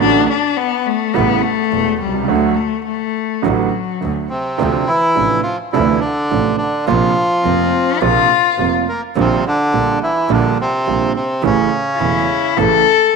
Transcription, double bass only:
0, 0, Header, 1, 2, 480
1, 0, Start_track
1, 0, Key_signature, 2, "major"
1, 0, Tempo, 570885
1, 13, Time_signature, 4, 2, 24, 8
1, 3863, Key_signature, -1, "minor"
1, 11063, End_track
2, 0, Start_track
2, 0, Title_t, "Double bass"
2, 0, Program_c, 0, 43
2, 9, Note_on_c, 0, 33, 94
2, 213, Note_off_c, 0, 33, 0
2, 974, Note_on_c, 0, 33, 95
2, 1175, Note_off_c, 0, 33, 0
2, 1452, Note_on_c, 0, 28, 63
2, 1654, Note_off_c, 0, 28, 0
2, 1692, Note_on_c, 0, 36, 60
2, 1922, Note_off_c, 0, 36, 0
2, 1927, Note_on_c, 0, 38, 88
2, 2132, Note_off_c, 0, 38, 0
2, 2900, Note_on_c, 0, 33, 86
2, 3101, Note_off_c, 0, 33, 0
2, 3384, Note_on_c, 0, 38, 58
2, 3585, Note_off_c, 0, 38, 0
2, 3864, Note_on_c, 0, 38, 92
2, 4066, Note_off_c, 0, 38, 0
2, 4345, Note_on_c, 0, 33, 60
2, 4548, Note_off_c, 0, 33, 0
2, 4830, Note_on_c, 0, 38, 90
2, 5031, Note_off_c, 0, 38, 0
2, 5303, Note_on_c, 0, 33, 62
2, 5507, Note_off_c, 0, 33, 0
2, 5784, Note_on_c, 0, 34, 94
2, 5988, Note_off_c, 0, 34, 0
2, 6263, Note_on_c, 0, 29, 61
2, 6467, Note_off_c, 0, 29, 0
2, 6739, Note_on_c, 0, 34, 93
2, 6944, Note_off_c, 0, 34, 0
2, 7214, Note_on_c, 0, 29, 67
2, 7421, Note_off_c, 0, 29, 0
2, 7703, Note_on_c, 0, 34, 94
2, 7904, Note_off_c, 0, 34, 0
2, 8181, Note_on_c, 0, 34, 64
2, 8382, Note_off_c, 0, 34, 0
2, 8654, Note_on_c, 0, 34, 97
2, 8858, Note_off_c, 0, 34, 0
2, 9138, Note_on_c, 0, 34, 64
2, 9340, Note_off_c, 0, 34, 0
2, 9608, Note_on_c, 0, 33, 94
2, 9815, Note_off_c, 0, 33, 0
2, 10092, Note_on_c, 0, 28, 59
2, 10296, Note_off_c, 0, 28, 0
2, 10577, Note_on_c, 0, 33, 93
2, 10779, Note_off_c, 0, 33, 0
2, 11063, End_track
0, 0, End_of_file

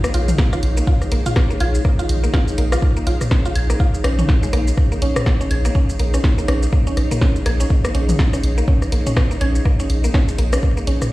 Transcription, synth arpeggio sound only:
0, 0, Header, 1, 2, 480
1, 0, Start_track
1, 0, Key_signature, -5, "minor"
1, 0, Tempo, 487805
1, 859, Time_signature, 4, 2, 24, 8
1, 10944, End_track
2, 0, Start_track
2, 0, Title_t, "Synth arpeggio sound"
2, 0, Program_c, 0, 84
2, 40, Note_on_c, 0, 58, 80
2, 60, Note_off_c, 0, 58, 0
2, 139, Note_on_c, 0, 65, 101
2, 165, Note_off_c, 0, 65, 0
2, 379, Note_on_c, 0, 58, 87
2, 405, Note_off_c, 0, 58, 0
2, 520, Note_on_c, 0, 65, 102
2, 540, Note_off_c, 0, 65, 0
2, 760, Note_on_c, 0, 58, 74
2, 779, Note_off_c, 0, 58, 0
2, 859, Note_on_c, 0, 65, 100
2, 885, Note_off_c, 0, 65, 0
2, 1100, Note_on_c, 0, 58, 76
2, 1125, Note_off_c, 0, 58, 0
2, 1241, Note_on_c, 0, 65, 103
2, 1261, Note_off_c, 0, 65, 0
2, 1480, Note_on_c, 0, 58, 77
2, 1499, Note_off_c, 0, 58, 0
2, 1579, Note_on_c, 0, 65, 106
2, 1604, Note_off_c, 0, 65, 0
2, 1818, Note_on_c, 0, 58, 86
2, 1844, Note_off_c, 0, 58, 0
2, 1959, Note_on_c, 0, 65, 105
2, 1979, Note_off_c, 0, 65, 0
2, 2199, Note_on_c, 0, 58, 78
2, 2219, Note_off_c, 0, 58, 0
2, 2298, Note_on_c, 0, 65, 104
2, 2324, Note_off_c, 0, 65, 0
2, 2538, Note_on_c, 0, 58, 73
2, 2564, Note_off_c, 0, 58, 0
2, 2679, Note_on_c, 0, 65, 95
2, 2699, Note_off_c, 0, 65, 0
2, 2919, Note_on_c, 0, 58, 81
2, 2939, Note_off_c, 0, 58, 0
2, 3019, Note_on_c, 0, 65, 102
2, 3044, Note_off_c, 0, 65, 0
2, 3258, Note_on_c, 0, 58, 83
2, 3284, Note_off_c, 0, 58, 0
2, 3400, Note_on_c, 0, 65, 101
2, 3419, Note_off_c, 0, 65, 0
2, 3639, Note_on_c, 0, 58, 79
2, 3659, Note_off_c, 0, 58, 0
2, 3739, Note_on_c, 0, 65, 98
2, 3764, Note_off_c, 0, 65, 0
2, 3979, Note_on_c, 0, 61, 78
2, 4042, Note_off_c, 0, 61, 0
2, 4119, Note_on_c, 0, 61, 75
2, 4164, Note_off_c, 0, 61, 0
2, 4359, Note_on_c, 0, 56, 73
2, 4379, Note_off_c, 0, 56, 0
2, 4458, Note_on_c, 0, 58, 103
2, 4501, Note_off_c, 0, 58, 0
2, 4840, Note_on_c, 0, 58, 80
2, 4859, Note_off_c, 0, 58, 0
2, 4939, Note_on_c, 0, 61, 79
2, 5002, Note_off_c, 0, 61, 0
2, 5179, Note_on_c, 0, 58, 84
2, 5204, Note_off_c, 0, 58, 0
2, 5320, Note_on_c, 0, 61, 78
2, 5364, Note_off_c, 0, 61, 0
2, 5559, Note_on_c, 0, 58, 79
2, 5579, Note_off_c, 0, 58, 0
2, 5658, Note_on_c, 0, 61, 87
2, 5722, Note_off_c, 0, 61, 0
2, 5898, Note_on_c, 0, 58, 76
2, 5924, Note_off_c, 0, 58, 0
2, 6040, Note_on_c, 0, 61, 78
2, 6085, Note_off_c, 0, 61, 0
2, 6280, Note_on_c, 0, 58, 76
2, 6300, Note_off_c, 0, 58, 0
2, 6379, Note_on_c, 0, 61, 73
2, 6442, Note_off_c, 0, 61, 0
2, 6618, Note_on_c, 0, 58, 82
2, 6644, Note_off_c, 0, 58, 0
2, 6760, Note_on_c, 0, 61, 80
2, 6804, Note_off_c, 0, 61, 0
2, 6999, Note_on_c, 0, 58, 80
2, 7019, Note_off_c, 0, 58, 0
2, 7098, Note_on_c, 0, 61, 82
2, 7162, Note_off_c, 0, 61, 0
2, 7339, Note_on_c, 0, 58, 82
2, 7364, Note_off_c, 0, 58, 0
2, 7480, Note_on_c, 0, 61, 76
2, 7524, Note_off_c, 0, 61, 0
2, 7720, Note_on_c, 0, 58, 80
2, 7740, Note_off_c, 0, 58, 0
2, 7819, Note_on_c, 0, 61, 72
2, 7882, Note_off_c, 0, 61, 0
2, 8059, Note_on_c, 0, 58, 84
2, 8084, Note_off_c, 0, 58, 0
2, 8200, Note_on_c, 0, 61, 75
2, 8245, Note_off_c, 0, 61, 0
2, 8440, Note_on_c, 0, 58, 77
2, 8460, Note_off_c, 0, 58, 0
2, 8539, Note_on_c, 0, 61, 82
2, 8603, Note_off_c, 0, 61, 0
2, 8779, Note_on_c, 0, 58, 71
2, 8805, Note_off_c, 0, 58, 0
2, 8921, Note_on_c, 0, 61, 75
2, 8965, Note_off_c, 0, 61, 0
2, 9160, Note_on_c, 0, 58, 73
2, 9180, Note_off_c, 0, 58, 0
2, 9259, Note_on_c, 0, 61, 81
2, 9323, Note_off_c, 0, 61, 0
2, 9500, Note_on_c, 0, 58, 87
2, 9525, Note_off_c, 0, 58, 0
2, 9640, Note_on_c, 0, 61, 81
2, 9685, Note_off_c, 0, 61, 0
2, 9880, Note_on_c, 0, 58, 76
2, 9900, Note_off_c, 0, 58, 0
2, 9979, Note_on_c, 0, 61, 89
2, 10043, Note_off_c, 0, 61, 0
2, 10219, Note_on_c, 0, 58, 75
2, 10244, Note_off_c, 0, 58, 0
2, 10359, Note_on_c, 0, 61, 75
2, 10404, Note_off_c, 0, 61, 0
2, 10600, Note_on_c, 0, 58, 77
2, 10619, Note_off_c, 0, 58, 0
2, 10698, Note_on_c, 0, 61, 75
2, 10762, Note_off_c, 0, 61, 0
2, 10944, End_track
0, 0, End_of_file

